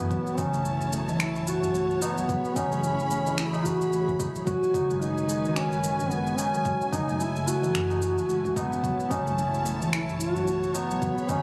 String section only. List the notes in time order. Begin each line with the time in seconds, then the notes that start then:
Already playing: E4
0.11 C#5 A5
2.29 G#4 B5
4.47 F#4 B4 G#5
6.66 E4 A4
8.83 C#5 A5
11.02 G#4 B5